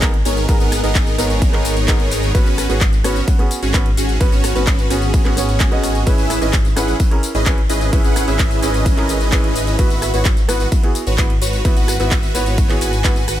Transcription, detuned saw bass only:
0.00 0.23 G#1 loud
0.25 0.46 G#1 loud
0.49 0.58 G#1 loud
0.60 0.81 G#1 loud
0.84 1.16 G#1 medium
1.18 2.32 G#1 loud
2.35 2.67 G#1 loud
2.70 3.02 G#1 loud
3.04 3.22 G#1 loud
3.63 3.95 G#1 loud
3.97 4.18 G#1 loud
4.21 4.30 G#1 loud
4.32 4.53 G#1 loud
4.56 4.88 G#1 loud
4.90 6.05 G#1 loud
6.07 6.39 G#1 loud
6.42 6.74 G#1 loud
6.77 6.94 G#1 loud
7.35 7.67 G#1 loud
7.70 7.91 G#1 loud
7.93 8.02 G#1 loud
8.04 8.25 G#1 loud
8.28 8.60 G#1 loud
8.63 9.77 G#1 loud
9.79 10.12 G#1 loud
10.14 10.46 G#1 medium
10.49 10.66 G#1 loud
11.07 11.39 G#1 loud
11.42 11.63 G#1 loud
11.65 11.74 G#1 loud
11.77 11.98 G#1 loud
12.00 12.32 G#1 loud
12.35 12.79 G#1 loud
12.81 13.26 G#1 medium
13.28 13.40 G#1 loud

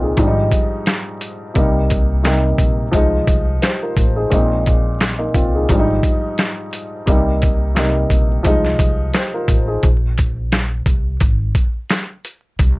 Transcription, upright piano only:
0.00 0.20 A#2 medium
0.00 0.20 G#3 medium
0.00 0.20 A#3 medium
0.00 0.20 C4 medium
0.00 0.03 D#4 medium
0.00 0.26 D#4 medium
0.00 0.20 F4 medium
0.00 0.03 G#4 medium
0.00 0.35 G#4 medium
0.17 1.29 G#2 loud
0.17 1.29 F3 medium
0.17 1.30 G3 medium
0.17 0.26 D4 medium
0.27 1.34 D#4 medium
1.54 2.11 C3 medium
1.54 2.12 G3 medium
1.54 2.13 A#3 medium
1.54 2.13 D#4 medium
2.23 2.93 C3 medium
2.23 2.94 G3 medium
2.23 2.94 A#3 medium
2.23 2.94 D#4 medium
2.91 4.04 F3 medium
2.91 4.05 G#3 medium
2.91 3.63 D#4 loud
3.62 3.81 G4 medium
3.62 3.80 C5 medium
3.82 4.15 F4 medium
3.82 4.15 A#4 medium
4.16 4.33 D#4 medium
4.16 4.49 G#4 medium
4.30 4.88 A#2 medium
4.30 4.88 G#3 medium
4.30 4.67 C4 medium
4.30 4.67 D#4 medium
5.18 5.34 A#3 medium
5.18 5.34 D#4 medium
5.34 5.53 C4 medium
5.34 5.52 F4 medium
5.55 5.78 D#4 medium
5.55 5.87 G#4 medium
5.69 6.80 G#2 medium
5.69 6.81 F3 medium
5.69 6.82 G3 medium
5.69 5.78 D4 medium
5.79 6.86 D#4 loud
7.06 7.63 C3 medium
7.06 7.64 G3 medium
7.06 7.65 A#3 medium
7.06 7.65 D#4 medium
7.75 8.45 C3 medium
7.75 8.45 G3 medium
7.75 8.46 A#3 medium
7.75 8.45 D#4 medium
8.43 9.55 F3 medium
8.43 9.56 G#3 medium
8.43 9.15 D#4 loud
9.14 9.32 G4 medium
9.14 9.32 C5 medium
9.34 9.67 F4 medium
9.34 9.66 A#4 medium
9.68 9.83 D#4 medium
9.68 9.83 G#4 medium

